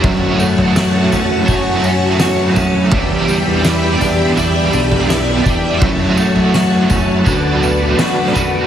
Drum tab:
TB |--x-x-x-x-x-x-x-|--x-x-x-x-x-x-x-|--x-x-x-x-x-x-x-|
SD |----o-------o---|----o-------o---|----o-------o---|
FT |o--o--o-o-----o-|o-----o-o--o--o-|o--o--o-o-----o-|
BD |o-------o-------|o-------------o-|o-----o-o-------|